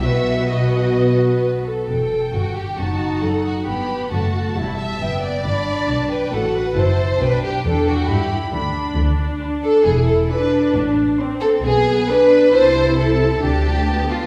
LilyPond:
<<
  \new Staff \with { instrumentName = "Violin section" } { \time 4/4 \key e \minor \tempo 4 = 135 e''4 dis''2 r4 | g''2 a''4 fis''4 | b''4 a''2 g''4 | b''4 a''8 g''8 fis''4 a''4 |
g''4 g''4 b''4 b''4 | \key a \minor r4 b''4 r4 gis''4 | r4 c'''4 r4 b''4 | a''4 a''4 a''2 | }
  \new Staff \with { instrumentName = "Violin section" } { \time 4/4 \key e \minor <fis' b'>4 <fis' b'>4. b'4 a'8~ | a'4 fis'8 g'8 fis'4 a'8 fis'8 | g'4 fis'4 e'8 e''4 d''8~ | d''4. b'8 a'8 b'8 c''4 |
b'8 g'8 a'8 fis'8 g'8 r4. | \key a \minor r4. a'8 gis'8 a'8 b'4 | r4. a'8 gis'4 b'4 | c''4 a'4 g'4. f'8 | }
  \new Staff \with { instrumentName = "Viola section" } { \time 4/4 \key e \minor <b fis'>4 <b fis'>2~ <b fis'>8 r8 | r2 dis'2 | b4 a4 g4 b4 | d'2 fis'4 e'4 |
d'4 d'4 e'4 d'4~ | \key a \minor d'2 e'4 d'4~ | d'4 c'4 b4 d'4 | e'2 d'4 b4 | }
  \new Staff \with { instrumentName = "Cello section" } { \clef bass \time 4/4 \key e \minor b,2.~ b,8 r8 | e,4 g,4 fis,4 fis4 | g,4 fis,4 e,4 fis,4 | g,4 b,4 a,4 fis,4 |
b,4 e4 g4 d4 | \key a \minor d,4 r4 e,4 r4 | a,4 r4 b,4 r4 | c2 d,2 | }
  \new Staff \with { instrumentName = "Double bass section" } { \clef bass \time 4/4 \key e \minor b,,2.~ b,,8 r8 | e,,4 g,,4 fis,,4 fis,4 | g,,4 fis,,4 e,,4 fis,,4 | g,,4 b,,4 a,,4 fis,,4 |
b,,4 e,4 g,4 d,4 | \key a \minor d,4 r4 e,,4 r4 | a,,4 r4 b,,4 r4 | c,2 d,2 | }
>>